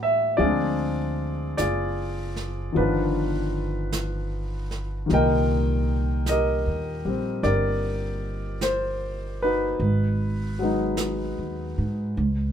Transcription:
0.00 0.36 A2 medium
0.00 0.38 F#3 soft
0.00 0.40 G3 soft
0.00 0.39 A3 soft
0.00 0.41 B3 soft
0.00 0.42 D4 medium
0.00 0.37 B4 soft
0.00 0.35 D5 soft
0.00 0.37 E5 medium
0.00 0.41 F#5 medium
0.37 1.53 D2 medium
0.37 2.73 F3 soft
0.37 2.75 G#3 soft
0.37 1.57 F4 medium
0.37 1.58 G#4 medium
0.37 1.56 D5 medium
0.37 brush sweep soft
0.42 2.76 C4 soft
0.42 2.76 D4 soft
1.57 2.72 F#1 medium
1.57 2.72 F4 soft
1.57 2.72 G#4 soft
1.57 2.71 D5 medium
1.57 brush sweep soft
1.57 snare soft
1.57 hi-hat pedal soft
2.36 snare soft
2.72 5.06 G1 medium
2.72 5.04 D#3 soft
2.72 5.09 F3 soft
2.72 5.10 B3 soft
2.72 brush sweep soft
2.77 5.10 D4 soft
2.77 5.07 F4 soft
2.77 4.69 B4 medium
3.92 brush sweep soft
3.92 snare soft
3.92 hi-hat pedal soft
4.71 snare soft
5.06 9.79 A#2 soft
5.06 9.77 D#3 soft
5.06 7.04 G3 soft
5.06 brush sweep soft
5.06 snare soft
5.11 6.62 C2 medium
5.11 9.43 D#4 soft
5.11 6.29 A#4 medium
5.11 6.28 D#5 medium
5.11 6.25 G5 medium
6.26 7.43 A#4 medium
6.26 7.48 D#5 medium
6.26 brush sweep soft
6.26 snare soft
6.26 hi-hat pedal soft
6.30 7.42 G4 soft
6.67 7.02 D#2 soft
7.05 7.41 A#1 soft
7.05 9.78 G3 soft
7.05 9.80 C4 soft
7.43 9.75 G1 medium
7.43 9.75 G4 soft
7.43 9.75 A#4 medium
7.43 8.65 D5 medium
7.43 brush sweep soft
7.43 snare soft
8.61 9.44 C5 medium
8.61 brush sweep soft
8.61 snare soft
8.61 hi-hat pedal soft
9.42 10.62 D#4 soft
9.42 12.12 F#4 soft
9.42 12.52 B4 medium
9.79 11.32 G#1 medium
9.79 brush sweep soft
10.59 12.14 F#3 soft
10.59 12.15 G#3 soft
10.59 12.16 B3 soft
10.63 12.17 D#4 soft
10.97 brush sweep soft
10.97 snare soft
10.97 hi-hat pedal soft
11.38 11.74 D#2 soft
11.78 12.13 G#2 medium
12.15 12.52 C#2 medium
12.15 brush sweep soft

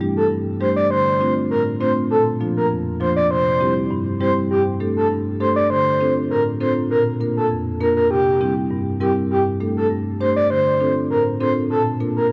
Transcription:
0.00 0.16 G2 medium
0.00 0.13 G3 medium
0.00 0.13 A3 medium
0.00 0.13 D4 medium
0.00 0.14 G4 medium
0.17 0.28 A4 medium
0.31 0.76 G2 medium
0.60 0.73 G3 medium
0.60 0.73 A3 medium
0.60 0.73 D4 medium
0.60 0.73 G4 medium
0.60 0.73 C5 medium
0.76 0.87 D5 medium
0.91 1.36 D3 medium
0.91 1.34 C5 loud
1.20 1.33 A3 medium
1.20 1.33 C4 medium
1.20 1.33 D4 medium
1.20 1.33 F4 medium
1.50 1.96 A2 medium
1.50 1.63 A#4 medium
1.80 1.93 A3 medium
1.80 1.93 C4 medium
1.80 1.93 D4 medium
1.80 1.93 F4 medium
1.80 1.93 C5 medium
2.10 2.56 A#2 medium
2.10 2.23 A4 loud
2.40 2.53 F3 medium
2.40 2.53 A#3 medium
2.40 2.53 D4 medium
2.40 2.53 F4 medium
2.57 2.67 A#4 medium
2.71 3.16 F2 medium
3.00 3.13 F3 medium
3.00 3.13 A#3 medium
3.00 3.13 D4 medium
3.00 3.13 F4 medium
3.00 3.13 C5 medium
3.16 3.27 D5 medium
3.31 3.76 C3 medium
3.31 3.74 C5 loud
3.60 3.73 G3 medium
3.60 3.73 C4 medium
3.60 3.73 E4 medium
3.60 3.73 G4 medium
3.91 4.36 G2 medium
4.20 4.33 G3 medium
4.20 4.33 C4 medium
4.20 4.33 E4 medium
4.20 4.33 G4 medium
4.20 4.33 C5 medium
4.50 4.96 G2 medium
4.50 4.63 G4 loud
4.80 4.93 A3 medium
4.80 4.93 D4 medium
4.80 4.93 G4 medium
4.80 4.93 A4 medium
4.96 5.07 A4 medium
5.11 5.56 G2 medium
5.40 5.53 A3 medium
5.40 5.53 D4 medium
5.40 5.53 G4 medium
5.40 5.53 A4 medium
5.40 5.53 C5 medium
5.56 5.67 D5 medium
5.70 6.16 D3 medium
5.70 6.13 C5 loud
6.00 6.13 C4 medium
6.00 6.13 D4 medium
6.00 6.13 F4 medium
6.00 6.13 A4 medium
6.30 6.76 A2 medium
6.30 6.43 A#4 medium
6.60 6.73 C4 medium
6.60 6.73 D4 medium
6.60 6.73 F4 medium
6.60 6.73 A4 medium
6.60 6.73 C5 medium
6.90 7.36 A#2 medium
6.90 7.03 A#4 loud
7.20 7.33 A#3 medium
7.20 7.33 D4 medium
7.20 7.33 F4 medium
7.20 7.33 A#4 medium
7.37 7.47 A4 medium
7.51 7.96 F2 medium
7.80 7.93 A#3 medium
7.80 7.93 D4 medium
7.80 7.93 F4 medium
7.80 7.93 A#4 medium
7.97 8.07 A#4 medium
8.11 8.56 C3 medium
8.11 8.54 G4 loud
8.41 8.53 G3 medium
8.41 8.53 C4 medium
8.41 8.53 E4 medium
8.41 8.54 G4 medium
8.71 9.16 G2 medium
9.01 9.13 G3 medium
9.01 9.13 C4 medium
9.01 9.13 E4 medium
9.01 9.13 G4 medium
9.01 9.13 A#4 medium
9.31 9.76 G2 medium
9.31 9.43 G4 loud
9.60 9.73 A3 medium
9.60 9.73 D4 medium
9.60 9.73 G4 medium
9.60 9.73 A4 medium
9.76 9.87 A4 medium
9.91 10.36 G2 medium
10.20 10.33 A3 medium
10.20 10.33 D4 medium
10.20 10.33 G4 medium
10.20 10.33 C5 medium
10.36 10.47 D5 medium
10.50 10.96 D3 medium
10.50 10.94 C5 loud
10.80 10.93 C4 medium
10.80 10.93 D4 medium
10.80 10.93 F4 medium
10.80 10.93 A4 medium
11.11 11.56 A2 medium
11.11 11.23 A#4 medium
11.40 11.53 C4 medium
11.40 11.53 D4 medium
11.40 11.53 F4 medium
11.40 11.53 A4 medium
11.40 11.53 C5 medium
11.70 12.16 A#2 medium
11.70 11.83 A4 loud
12.00 12.13 A#3 medium
12.00 12.13 D4 medium
12.00 12.13 F4 medium
12.00 12.13 A#4 medium
12.16 12.27 A#4 medium

